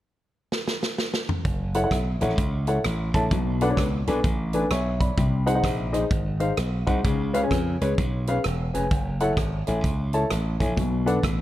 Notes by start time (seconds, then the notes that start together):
0.52 snare
0.68 snare
0.83 snare
0.98 snare
1.14 snare
1.29 mid tom
1.45 F#1, kick, closed hi-hat
1.74 E4 A4 C#5 F#5, closed hi-hat
1.83 E4 A4 C#5 F#5
1.91 B1, kick, cross-stick, closed hi-hat
2.21 A1 E4 A4 C#5 F#5, cross-stick, closed hi-hat
2.30 cross-stick
2.38 C#2, kick, closed hi-hat
2.67 E4 A4 C#5 F#5, closed hi-hat
2.85 A1, cross-stick, closed hi-hat
3.14 A#1 E4 A4 C#5 A5, kick, closed hi-hat
3.31 B1 B2, kick, closed hi-hat
3.61 D4 A4 B4 F#5, closed hi-hat
3.70 D4 A4 B4 C#5
3.77 C#2, kick, cross-stick, closed hi-hat
4.07 B1 D4 A4 B4 G#5, closed hi-hat
4.24 A1, kick, closed hi-hat
4.53 D4 A4 B4 G#5, closed hi-hat
4.71 B1 C#5 E5 C#6, cross-stick, closed hi-hat
5.00 D5 B5, kick, closed hi-hat
5.18 C2 C3, kick, closed hi-hat
5.46 D#4 G#4 C5 F#5, closed hi-hat
5.55 D#4 G#4 C5 F#5
5.64 A#1, kick, cross-stick, closed hi-hat
5.93 D#4 G#4 C5 D#5, cross-stick, closed hi-hat
6.11 G#1, kick, closed hi-hat
6.40 D#4 G#4 C5 F5, closed hi-hat
6.57 B1, cross-stick, closed hi-hat
6.87 C2 D#4 G#4 C5 F#5, kick, closed hi-hat
7.04 C#2 C#3, kick, closed hi-hat
7.34 C#4 G#4 B4 F5, closed hi-hat
7.43 C#4 G#4 B4 G#5
7.51 F2, kick, cross-stick, closed hi-hat
7.81 C#2 C#4 G#4 B4 C#5, closed hi-hat
7.98 B1, kick, closed hi-hat
8.27 C#4 G#4 B4 F5, closed hi-hat
8.44 E1, cross-stick, closed hi-hat
8.74 F1 C#4 G#4 B4 G#5, closed hi-hat
8.91 F#1, kick, closed hi-hat
9.20 E4 A4 C#5 F#5, closed hi-hat
9.37 G#1, kick, cross-stick, closed hi-hat
9.67 A1 E4 A4 C#5 G#5, closed hi-hat
9.84 C#2, kick, closed hi-hat
10.13 E4 A4 C#5 A5, closed hi-hat
10.31 A1, cross-stick, closed hi-hat
10.60 A#1 E4 A4 C#5 G#5, kick, closed hi-hat
10.77 B1 B2, kick, closed hi-hat
11.06 D4 A4 B4 F#5, closed hi-hat
11.23 A1, kick, cross-stick, closed hi-hat